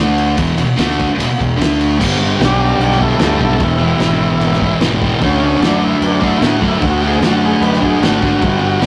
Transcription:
0.00 0.34 D2 medium
0.00 0.36 D3 medium
0.00 0.37 A3 loud
0.00 0.37 D4 medium
0.18 ride medium
0.36 0.56 E1 loud
0.36 0.56 E2 medium
0.36 0.56 B2 loud
0.36 0.58 E3 loud
0.36 kick loud
0.36 ride loud
0.56 0.66 E1 medium
0.56 0.66 E2 medium
0.56 0.68 B2 medium
0.56 ride medium
0.67 muted distorted electric guitar stroke medium
0.67 muted fingered electric bass stroke soft
0.76 1.06 D2 medium
0.76 1.07 D3 medium
0.76 1.07 A3 loud
0.76 1.08 D4 loud
0.76 snare medium
0.76 ride medium
0.90 snare soft
1.00 kick medium
1.00 ride medium
1.08 muted distorted electric guitar stroke medium
1.08 muted fingered electric bass stroke soft
1.17 1.27 E1 medium
1.17 1.26 E2 loud
1.17 1.28 B2 loud
1.17 ride medium
1.27 muted distorted electric guitar stroke medium
1.27 muted fingered electric bass stroke soft
1.39 1.58 E1 medium
1.39 1.55 E2 medium
1.39 1.55 B2 medium
1.39 kick medium
1.39 ride medium
1.57 1.96 D2 medium
1.57 1.98 D3 medium
1.57 1.98 A3 medium
1.57 1.99 D4 medium
1.61 snare loud
1.61 ride medium
1.81 ride medium
1.99 2.33 G1 loud
1.99 2.38 G2 loud
1.99 2.22 D3 loud
1.99 2.18 G3 loud
1.99 kick loud
1.99 crash loud
1.99 crash medium
2.19 2.41 D3 medium
2.19 2.43 G3 medium
2.39 2.73 B1 medium
2.39 3.17 G2 medium
2.39 3.03 D3 medium
2.39 2.42 F#4 medium
2.39 snare loud
2.39 crash medium
2.44 2.98 G3 medium
2.44 2.61 D4 medium
2.44 2.62 G4 loud
2.62 2.80 D4 medium
2.62 2.81 G4 loud
2.78 3.12 B1 medium
2.78 3.00 D4 medium
2.78 crash medium
2.83 3.01 G4 medium
2.92 snare soft
2.99 3.21 G3 medium
2.99 3.20 E4 medium
2.99 3.21 A4 medium
2.99 kick medium
3.04 3.20 D3 medium
3.18 3.37 D2 medium
3.18 3.56 G2 loud
3.18 3.41 D3 loud
3.18 3.40 E4 medium
3.18 snare loud
3.18 crash medium
3.23 3.36 G3 loud
3.23 3.41 A4 medium
3.37 3.57 B1 medium
3.37 3.58 G3 medium
3.37 kick medium
3.42 3.59 D3 medium
3.42 3.61 E4 medium
3.42 3.62 A4 loud
3.56 3.93 E1 loud
3.56 3.97 E2 loud
3.56 3.82 B2 loud
3.56 crash medium
3.61 3.78 E3 loud
3.61 4.79 E4 loud
3.61 kick loud
3.79 4.00 E3 medium
3.83 3.99 B2 medium
3.98 4.33 G#1 loud
3.98 4.79 E2 medium
3.98 4.62 B2 medium
3.98 4.58 E3 medium
3.98 snare loud
3.98 crash medium
4.39 4.73 G#1 loud
4.39 crash medium
4.53 snare soft
4.60 4.81 B2 medium
4.60 4.83 E3 medium
4.60 kick medium
4.79 5.13 G#1 medium
4.79 5.20 E2 medium
4.79 5.03 B2 loud
4.79 snare loud
4.79 crash medium
4.84 4.98 E3 loud
5.00 5.20 E3 medium
5.00 kick medium
5.04 5.21 B2 medium
5.18 5.54 D2 loud
5.18 5.60 D3 medium
5.18 5.21 C4 medium
5.18 kick loud
5.18 crash medium
5.22 5.44 A3 loud
5.22 5.62 C#4 loud
5.22 5.40 D4 loud
5.40 5.65 D4 medium
5.44 5.63 A3 medium
5.60 5.94 F#2 medium
5.60 6.38 D3 medium
5.60 6.22 A3 medium
5.60 snare loud
5.60 crash medium
5.65 6.19 D4 medium
5.65 5.84 D4 medium
5.84 6.03 E4 medium
6.01 6.35 F#2 medium
6.01 crash medium
6.06 6.24 D4 medium
6.20 6.41 A3 medium
6.20 6.42 D4 medium
6.20 kick medium
6.27 6.44 E4 medium
6.39 6.58 A2 medium
6.39 6.80 D3 loud
6.39 6.62 A3 loud
6.39 6.59 D4 loud
6.39 snare loud
6.39 crash medium
6.46 6.64 F#4 medium
6.59 6.79 F#2 medium
6.59 6.85 D4 medium
6.59 kick medium
6.64 6.82 A3 medium
6.68 6.85 E4 medium
6.81 7.15 D2 loud
6.81 7.19 D3 medium
6.81 7.04 A3 loud
6.81 7.02 D4 loud
6.81 kick loud
6.81 crash medium
6.90 7.06 F#4 medium
7.02 7.21 A3 medium
7.02 7.24 D4 medium
7.06 7.24 G#4 medium
7.20 7.55 F#2 loud
7.20 7.99 D3 medium
7.20 7.84 A3 medium
7.20 snare loud
7.20 crash medium
7.25 7.80 D4 medium
7.25 7.44 F#4 medium
7.45 7.64 G#4 loud
7.61 7.95 F#2 medium
7.61 7.82 B4 medium
7.61 crash medium
7.73 snare soft
7.81 8.04 D4 medium
7.81 8.03 G#4 medium
7.81 kick medium
7.85 8.02 A3 medium
8.00 8.42 G#1 medium
8.00 8.41 D3 medium
8.00 8.25 A3 medium
8.00 8.81 F#4 loud
8.00 snare loud
8.00 crash medium
8.05 8.20 D4 loud
8.21 8.41 D4 medium
8.21 kick medium
8.26 8.44 A3 medium
8.41 8.76 G1 medium
8.41 8.79 G2 loud
8.41 8.62 D3 loud
8.41 kick loud
8.41 crash medium
8.46 8.58 G3 loud
8.59 8.82 D3 medium
8.59 8.84 G3 medium
8.81 8.86 B1 loud
8.81 8.86 G2 medium
8.81 8.86 D3 medium
8.81 snare loud
8.81 crash medium

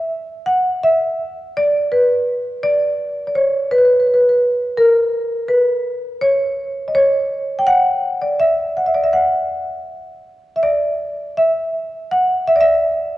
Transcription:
0.00 0.49 E5 medium
0.46 0.80 F#5 medium
0.83 1.57 E5 loud
1.57 1.89 D5 loud
1.92 2.64 B4 medium
2.63 3.23 D5 medium
3.27 3.33 D5 medium
3.35 3.71 C#5 medium
3.71 3.77 B4 medium
3.78 3.84 B4 medium
3.85 3.91 B4 medium
3.93 3.98 B4 soft
4.00 4.05 B4 soft
4.07 4.13 B4 soft
4.14 4.20 B4 medium
4.22 4.27 B4 soft
4.29 4.35 B4 medium
4.78 5.45 A#4 medium
5.48 6.16 B4 medium
6.21 6.89 C#5 medium
6.88 6.94 D#5 medium
6.95 7.55 C#5 loud
7.59 7.65 G5 medium
7.67 8.16 F#5 loud
8.22 8.39 D5 medium
8.40 8.77 E5 medium
8.77 8.85 F#5 medium
8.86 8.94 E5 medium
8.94 9.03 D5 medium
9.04 9.12 E5 medium
9.13 10.20 F#5 medium
10.56 10.62 E5 medium
10.63 11.34 D5 medium
11.37 12.14 E5 medium
12.11 12.49 F#5 medium
12.48 12.55 E5 medium
12.56 12.62 D5 medium
12.61 13.18 E5 loud

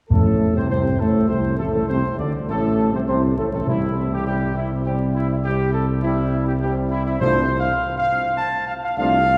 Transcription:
0.10 0.57 A1 medium
0.10 0.96 F2 medium
0.10 0.53 A2 medium
0.10 0.53 A3 medium
0.10 0.52 A4 medium
0.56 0.70 C2 medium
0.56 0.69 C3 soft
0.56 0.69 C4 medium
0.56 0.69 C5 medium
0.70 0.98 C2 medium
0.70 0.83 C3 medium
0.70 0.98 C4 medium
0.70 0.98 C5 medium
0.99 1.13 A1 soft
0.99 1.28 A2 medium
0.99 1.28 A3 medium
0.99 1.30 A4 medium
1.29 1.57 C2 medium
1.29 1.60 C3 medium
1.29 1.43 C4 medium
1.29 1.57 C5 medium
1.58 1.66 A1 medium
1.58 1.73 A2 medium
1.58 1.73 A3 medium
1.58 1.72 A4 medium
1.74 1.81 A1 medium
1.74 1.81 A2 soft
1.74 1.88 A3 medium
1.74 1.88 A4 medium
1.88 2.02 C2 medium
1.88 2.02 C3 medium
1.88 2.02 C4 medium
1.88 2.16 C5 medium
2.18 2.32 D2 medium
2.18 2.46 D3 medium
2.18 2.32 D4 medium
2.18 2.32 D5 medium
2.48 2.90 A1 medium
2.48 2.90 A2 medium
2.48 2.90 A3 medium
2.48 2.90 A4 medium
2.93 2.99 C2 medium
2.93 3.06 C3 medium
2.93 3.00 C4 medium
2.93 3.01 C5 medium
3.07 3.36 C2 medium
3.07 3.35 C3 medium
3.07 3.35 C4 medium
3.07 3.21 C5 medium
3.37 3.44 A1 medium
3.37 3.51 A2 medium
3.37 3.51 A3 medium
3.37 3.44 A4 medium
3.52 3.67 A1 medium
3.52 3.66 A2 medium
3.52 3.66 A3 medium
3.52 3.67 A4 medium
3.66 7.16 C2 medium
3.66 4.22 C3 soft
3.66 4.52 C3 medium
3.66 4.22 G3 soft
3.66 4.23 C4 medium
3.66 4.09 E4 medium
4.13 4.26 G4 medium
4.26 4.82 C3 medium
4.26 4.81 G3 medium
4.26 4.83 C4 medium
4.26 4.54 G4 medium
4.57 4.70 E4 medium
4.85 5.41 C3 soft
4.85 5.41 G3 medium
4.85 5.41 C4 medium
4.85 4.99 G4 medium
5.16 5.30 E4 medium
5.31 5.38 E4 medium
5.44 6.00 C3 medium
5.44 6.00 G3 soft
5.44 6.00 C4 medium
5.44 5.72 G4 medium
5.73 5.87 A4 medium
6.02 6.58 C3 medium
6.02 6.58 G3 medium
6.02 6.58 C4 medium
6.02 6.43 E4 medium
6.47 6.53 G4 medium
6.60 7.17 C3 medium
6.60 7.17 G3 medium
6.60 7.17 C4 medium
6.60 6.74 G4 medium
6.90 7.04 E4 medium
7.06 7.20 E4 medium
7.20 7.70 C2 medium
7.20 8.04 C3 medium
7.20 7.41 C3 medium
7.20 7.41 F3 medium
7.20 7.41 A3 medium
7.20 7.41 D4 medium
7.20 7.57 C5 medium
7.60 7.96 F5 medium
7.98 8.35 F5 medium
8.37 8.65 A5 medium
8.68 8.74 F5 medium
8.83 8.96 F5 medium
8.97 9.38 C2 medium
8.97 9.18 C3 medium
8.97 9.18 F3 medium
8.97 9.18 A3 medium
8.97 9.18 D4 medium
8.97 9.38 F5 loud

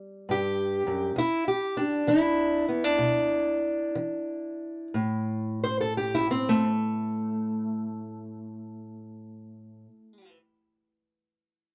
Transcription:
0.00 0.23 E2 medium
0.00 1.16 G3 medium
0.29 0.86 G2 medium
0.29 1.18 G4 medium
0.87 1.15 F#2 medium
1.16 2.00 E2 medium
1.16 1.47 E4 medium
1.48 1.77 G4 medium
1.77 2.68 D4 medium
2.07 2.93 E3 medium
2.07 4.94 E4 medium
2.68 2.84 B3 soft
2.84 4.94 D4 soft
2.98 3.88 B2 medium
3.95 4.87 E3 medium
4.94 9.86 A2 medium
5.64 5.80 C5 medium
5.81 5.93 A4 medium
5.97 6.18 G4 medium
6.15 6.26 E4 medium
6.31 6.62 C4 medium
6.49 10.37 A3 medium

